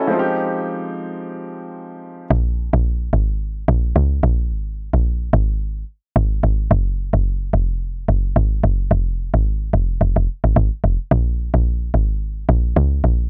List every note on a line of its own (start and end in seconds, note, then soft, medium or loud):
0.00 0.24 C#4 medium
0.00 0.12 E4 medium
0.00 0.12 F#4 medium
0.00 0.12 G#4 medium
0.00 0.24 A4 medium
0.00 0.12 B4 medium
0.00 0.12 C#5 medium
0.00 0.12 D#5 medium
0.00 0.12 E5 medium
0.00 0.12 F#5 medium
0.00 0.12 G#5 medium
0.07 2.25 F3 medium
0.07 2.26 G#3 medium
0.07 2.26 C4 medium
0.07 2.27 D#4 medium
0.13 0.19 F4 medium
0.19 2.31 G4 medium
2.30 2.69 A#1 loud
2.73 3.10 A#1 loud
3.13 3.64 G#1 medium
3.68 3.93 A#1 loud
3.96 4.21 C#2 loud
4.23 4.52 A#1 loud
4.51 4.90 G#1 loud
4.93 5.30 A#1 medium
5.33 5.84 G#1 loud
6.16 6.41 G#1 loud
6.43 6.68 G#1 medium
6.71 7.10 F#1 loud
7.13 7.50 F#1 loud
7.53 8.04 F1 loud
8.08 8.34 F#1 loud
8.36 8.61 G#1 loud
8.64 8.89 F#1 loud
8.91 9.30 F1 loud
9.34 9.70 G#1 loud
9.73 9.99 F1 loud
10.01 10.15 F1 loud
10.16 10.28 F1 loud
10.44 10.55 G#1 medium
10.56 10.70 G#1 loud
10.84 10.98 F1 loud
11.11 11.50 A#1 loud
11.54 11.90 A#1 loud
11.94 12.45 G#1 medium
12.49 12.74 A#1 loud
12.76 13.02 C#2 loud
13.04 13.30 A#1 medium